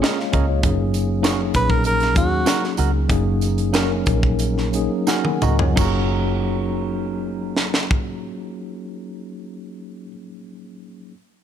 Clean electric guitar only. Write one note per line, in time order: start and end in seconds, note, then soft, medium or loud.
0.02 0.17 C#4 medium
0.02 0.18 G#4 medium
0.02 0.18 A#4 medium
0.32 0.44 C#4 medium
0.32 0.45 G#4 medium
0.32 0.45 A#4 medium
1.23 1.38 D#4 medium
1.23 1.39 F#4 medium
1.23 1.39 A#4 medium
2.46 2.62 D#4 medium
2.46 2.62 F#4 medium
2.46 2.63 A#4 medium
2.78 2.90 D#4 medium
2.78 2.90 F#4 medium
2.78 2.91 A#4 medium
3.74 3.90 D#4 medium
3.74 3.90 F#4 medium
3.74 3.90 A#4 medium
5.07 5.24 D#4 medium
5.07 5.25 F#4 medium
5.07 5.25 A#4 medium
5.42 5.55 D#4 soft
5.42 5.56 F#4 medium
5.42 5.56 A#4 medium
5.76 10.11 D#4 medium
5.76 10.13 F#4 medium
5.81 10.14 A#4 medium